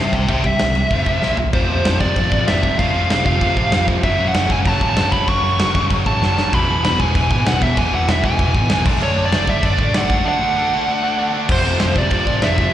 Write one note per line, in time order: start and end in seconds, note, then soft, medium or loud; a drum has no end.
0.00 0.11 C3 medium
0.00 0.11 G3 medium
0.00 0.13 E5 medium
0.00 0.13 G5 medium
0.13 0.23 C2 medium
0.13 0.27 C3 medium
0.13 0.27 G3 medium
0.13 0.28 E5 medium
0.13 0.29 G5 medium
0.13 kick medium
0.13 crash medium
0.28 0.49 C2 loud
0.28 0.43 C3 medium
0.28 0.43 G3 medium
0.28 0.43 C4 loud
0.28 0.44 E5 medium
0.28 0.46 G5 loud
0.28 kick loud
0.28 crash medium
0.44 0.58 C3 medium
0.44 0.58 G3 medium
0.44 1.36 E5 loud
0.44 kick medium
0.44 crash medium
0.59 0.81 C2 loud
0.59 0.74 C3 medium
0.59 0.74 G3 medium
0.59 snare loud
0.59 crash medium
0.75 0.89 C3 medium
0.75 0.89 G3 medium
0.75 crash medium
0.90 1.01 F1 loud
0.90 1.06 F2 loud
0.90 1.06 C3 medium
0.90 1.06 F3 loud
0.90 kick loud
0.90 crash medium
1.06 1.17 F1 medium
1.06 1.21 F2 medium
1.06 1.22 C3 medium
1.06 1.22 F3 medium
1.06 kick medium
1.06 crash medium
1.22 1.33 A#1 medium
1.22 1.36 A#2 medium
1.22 1.36 F3 medium
1.22 1.37 A#3 loud
1.22 snare medium
1.37 1.49 A#1 medium
1.37 1.52 A#2 medium
1.37 1.52 F3 medium
1.37 floor tom medium
1.53 1.65 F1 medium
1.53 1.69 F2 loud
1.53 1.68 C3 loud
1.53 1.68 F3 loud
1.53 1.97 C5 medium
1.53 kick loud
1.53 crash medium
1.69 1.84 F2 medium
1.69 1.81 F2 medium
1.69 1.84 C3 medium
1.69 1.85 F3 loud
1.85 1.97 F1 medium
1.85 2.00 F2 loud
1.85 1.99 C3 medium
1.85 1.99 F3 loud
1.85 snare loud
1.85 crash medium
2.00 2.12 F1 medium
2.00 2.15 F2 loud
2.00 2.16 C3 loud
2.00 2.16 F3 loud
2.00 2.44 D5 loud
2.00 kick medium
2.16 2.28 F1 loud
2.16 2.31 F2 loud
2.16 2.31 C3 medium
2.16 2.31 F3 loud
2.16 kick loud
2.16 crash medium
2.32 2.44 A1 medium
2.32 2.46 F2 medium
2.32 2.46 C3 medium
2.32 2.47 F3 loud
2.32 kick medium
2.47 2.71 F1 medium
2.47 2.63 F2 loud
2.47 2.62 C3 loud
2.47 2.62 F3 loud
2.47 2.78 E5 loud
2.47 snare loud
2.47 crash medium
2.63 2.78 F2 medium
2.63 2.78 C3 medium
2.63 2.78 F3 medium
2.63 kick loud
2.79 2.91 F1 loud
2.79 2.93 F2 loud
2.79 2.93 C3 loud
2.79 2.93 F3 loud
2.79 3.25 F5 loud
2.79 kick loud
2.79 crash medium
2.94 3.08 F2 medium
2.94 3.07 F2 medium
2.94 3.09 C3 loud
2.94 3.09 F3 loud
3.09 3.22 F1 loud
3.09 3.25 F2 medium
3.09 3.25 C3 medium
3.09 3.24 F3 medium
3.09 snare loud
3.09 crash medium
3.25 3.37 F1 medium
3.25 3.40 F2 loud
3.25 3.41 C3 loud
3.25 3.41 F3 loud
3.25 3.84 F5 loud
3.25 kick loud
3.41 3.53 F1 loud
3.41 3.57 F2 medium
3.41 3.56 C3 medium
3.41 3.56 F3 medium
3.41 kick loud
3.41 crash medium
3.57 3.69 A1 loud
3.57 3.71 F2 medium
3.57 3.71 C3 medium
3.57 3.72 F3 medium
3.57 kick medium
3.72 3.96 F1 medium
3.72 3.87 F2 loud
3.72 3.87 C3 loud
3.72 3.86 F3 loud
3.72 snare loud
3.72 crash medium
3.87 4.02 F2 medium
3.87 4.02 C3 medium
3.87 4.02 F3 loud
3.87 kick medium
4.03 4.15 F#1 loud
4.03 4.19 F#2 loud
4.03 4.18 C#3 loud
4.03 4.19 F#3 loud
4.03 4.25 E5 loud
4.03 kick loud
4.03 crash medium
4.19 4.31 F#2 medium
4.19 4.34 F#2 medium
4.19 4.34 C#3 medium
4.19 4.35 F#3 loud
4.28 4.49 F#5 loud
4.34 4.47 F#1 loud
4.34 4.50 F#2 medium
4.34 4.49 C#3 medium
4.34 4.50 F#3 medium
4.34 snare loud
4.34 crash medium
4.50 4.62 F#1 medium
4.50 4.64 F#2 loud
4.50 4.65 C#3 loud
4.50 4.65 F#3 loud
4.50 4.57 G#5 loud
4.50 kick medium
4.65 4.77 F#1 loud
4.65 4.82 F#2 medium
4.65 4.81 C#3 medium
4.65 4.81 F#3 loud
4.65 4.88 A5 loud
4.65 kick loud
4.65 crash medium
4.81 4.93 A1 medium
4.81 4.96 F#2 medium
4.81 4.96 C#3 medium
4.81 4.97 F#3 medium
4.81 kick medium
4.90 5.12 A5 loud
4.96 5.21 F#1 loud
4.96 5.12 F#2 loud
4.96 5.12 C#3 loud
4.96 5.11 F#3 loud
4.96 snare loud
4.96 crash medium
5.12 5.27 F#2 medium
5.12 5.27 C#3 medium
5.12 5.28 F#3 loud
5.12 5.28 B5 loud
5.12 kick medium
5.27 5.40 F#1 loud
5.27 5.43 F#2 loud
5.27 5.43 C#3 loud
5.27 5.42 F#3 loud
5.27 5.87 C#6 loud
5.27 kick loud
5.27 crash medium
5.43 5.55 F#2 medium
5.43 5.58 F#2 medium
5.43 5.58 C#3 medium
5.43 5.59 F#3 loud
5.59 5.71 F#1 loud
5.59 5.74 F#2 medium
5.59 5.73 C#3 medium
5.59 5.73 F#3 loud
5.59 snare loud
5.59 crash medium
5.75 5.87 F#1 medium
5.75 5.90 F#2 loud
5.75 5.90 C#3 loud
5.75 5.91 F#3 loud
5.75 kick medium
5.90 6.02 F#1 loud
5.90 6.06 F#2 loud
5.90 6.06 C#3 medium
5.90 6.05 F#3 loud
5.90 kick loud
5.90 crash medium
6.06 6.18 A1 loud
6.06 6.21 F#2 medium
6.06 6.21 C#3 medium
6.06 6.22 F#3 loud
6.06 6.37 A5 loud
6.06 kick medium
6.22 6.45 F#1 medium
6.22 6.37 F#2 loud
6.22 6.37 C#3 loud
6.22 6.36 F#3 loud
6.22 snare medium
6.37 6.52 F#2 medium
6.37 6.52 C#3 medium
6.37 6.52 F#3 medium
6.37 6.54 A5 loud
6.37 snare medium
6.53 6.65 E1 loud
6.53 6.69 E2 loud
6.53 6.68 B2 medium
6.53 6.68 E3 loud
6.53 6.83 B5 loud
6.53 kick loud
6.53 crash medium
6.69 6.84 E2 medium
6.69 6.81 E2 medium
6.69 6.84 B2 medium
6.69 6.85 E3 loud
6.84 6.96 E1 loud
6.84 6.99 E2 medium
6.84 6.99 B2 loud
6.84 6.98 E3 loud
6.84 6.99 B5 loud
6.84 snare loud
6.84 crash medium
7.00 7.11 E1 medium
7.00 7.13 E2 loud
7.00 7.14 B2 loud
7.00 7.14 E3 loud
7.00 7.30 G#5 loud
7.00 kick medium
7.15 7.27 E1 loud
7.15 7.30 E2 medium
7.15 7.30 B2 medium
7.15 7.30 E3 loud
7.15 kick loud
7.15 crash medium
7.30 7.42 G#1 loud
7.30 7.45 E2 medium
7.30 7.45 B2 medium
7.30 7.46 E3 medium
7.30 7.47 G#5 medium
7.30 kick medium
7.46 7.70 E1 medium
7.46 7.61 E2 loud
7.46 7.61 B2 loud
7.46 7.61 E3 loud
7.46 7.63 F#5 loud
7.46 snare loud
7.46 crash medium
7.62 7.76 E2 medium
7.62 7.77 B2 medium
7.62 7.77 E3 loud
7.62 7.78 E5 loud
7.62 kick loud
7.77 7.89 E1 loud
7.77 7.92 E2 medium
7.77 7.91 B2 loud
7.77 7.91 E3 loud
7.77 7.93 G#5 loud
7.77 kick loud
7.77 crash medium
7.92 8.06 E2 medium
7.92 8.05 E2 medium
7.92 8.07 B2 medium
7.92 8.07 E3 loud
7.92 8.11 F#5 loud
8.07 8.20 E1 loud
8.07 8.23 E2 medium
8.07 8.22 B2 medium
8.07 8.22 E3 loud
8.07 8.25 E5 medium
8.07 snare loud
8.07 crash medium
8.23 8.35 E1 loud
8.23 8.39 E2 loud
8.23 8.39 B2 loud
8.23 8.39 E3 loud
8.23 8.82 G#5 loud
8.23 kick medium
8.39 8.51 E1 loud
8.39 8.55 E2 medium
8.39 8.55 B2 medium
8.39 8.54 E3 medium
8.39 kick loud
8.39 crash medium
8.54 8.66 G#1 medium
8.54 8.69 E2 medium
8.54 8.70 B2 medium
8.54 8.70 E3 loud
8.54 kick medium
8.69 8.86 E1 medium
8.69 8.85 E2 loud
8.69 8.85 B2 loud
8.69 8.85 E3 loud
8.69 snare loud
8.69 crash medium
8.86 8.97 F#1 medium
8.86 9.01 D3 loud
8.86 9.01 A3 loud
8.86 9.01 D4 loud
8.86 kick loud
8.86 crash loud
9.01 9.13 F#1 loud
9.01 9.16 D3 medium
9.01 9.17 A3 loud
9.01 9.18 D4 loud
9.01 9.25 C#5 medium
9.01 crash medium
9.16 9.28 F#2 medium
9.16 9.32 D3 medium
9.16 9.33 A3 medium
9.16 9.32 D4 loud
9.25 9.49 D5 medium
9.32 9.43 F#1 loud
9.32 9.47 D3 medium
9.32 9.48 A3 medium
9.32 9.49 D4 medium
9.32 snare loud
9.32 crash medium
9.47 9.59 F#1 loud
9.47 9.63 D3 loud
9.47 9.63 A3 loud
9.47 9.62 D4 loud
9.47 9.65 E5 loud
9.47 kick loud
9.63 9.75 F#1 loud
9.63 9.78 D3 medium
9.63 9.79 A3 medium
9.63 9.79 D4 medium
9.63 9.95 D5 medium
9.63 kick loud
9.63 crash medium
9.79 9.90 A1 loud
9.79 9.94 D3 medium
9.79 9.94 A3 loud
9.79 9.93 D4 loud
9.79 kick medium
9.94 10.18 F#1 medium
9.94 10.08 D3 medium
9.94 10.09 A3 loud
9.94 10.09 D4 loud
9.94 10.25 F#5 medium
9.94 snare loud
9.94 crash medium
10.10 10.25 D3 medium
10.10 10.25 A3 medium
10.10 10.24 D4 loud
10.10 kick medium
10.25 10.40 D3 medium
10.25 10.40 A3 loud
10.25 10.40 D4 loud
10.25 11.31 F#5 medium
10.41 10.56 D3 loud
10.41 10.56 A3 medium
10.41 10.55 D4 loud
10.57 10.72 D3 medium
10.57 10.72 A3 medium
10.57 10.73 D4 loud
10.73 10.88 D3 loud
10.73 10.87 A3 loud
10.73 10.87 D4 loud
10.88 11.01 D3 medium
10.88 11.02 A3 medium
10.88 11.02 D4 loud
11.02 11.18 D3 medium
11.02 11.18 A3 medium
11.02 11.17 D4 loud
11.19 11.32 D3 medium
11.19 11.32 A3 loud
11.19 11.33 D4 loud
11.33 11.48 D3 medium
11.33 11.48 A3 loud
11.33 11.48 D4 loud
11.49 11.61 F1 loud
11.49 11.65 F2 medium
11.49 11.64 C3 loud
11.49 11.64 F3 loud
11.49 11.94 C5 medium
11.49 kick loud
11.49 crash loud
11.49 crash medium
11.64 11.80 F2 medium
11.64 11.77 F2 medium
11.64 11.80 C3 medium
11.64 11.81 F3 loud
11.80 11.92 F1 loud
11.80 11.97 F2 medium
11.80 11.95 C3 loud
11.80 11.96 F3 loud
11.80 snare loud
11.80 crash medium
11.96 12.07 F1 loud
11.96 12.11 F2 loud
11.96 12.11 C3 loud
11.96 12.11 F3 loud
11.96 12.43 D5 medium
11.96 kick medium
12.10 12.23 F1 loud
12.10 12.27 F2 medium
12.10 12.27 C3 loud
12.10 12.26 F3 medium
12.10 kick loud
12.10 crash medium
12.27 12.38 A1 loud
12.27 12.41 F2 medium
12.27 12.41 C3 medium
12.27 12.41 F3 medium
12.27 kick medium
12.42 12.66 F1 medium
12.42 12.58 F2 loud
12.42 12.58 C3 loud
12.42 12.57 F3 loud
12.42 12.73 E5 medium
12.42 snare loud
12.42 crash medium
12.58 12.73 F2 medium
12.58 12.73 C3 medium
12.58 12.73 F3 loud
12.58 kick medium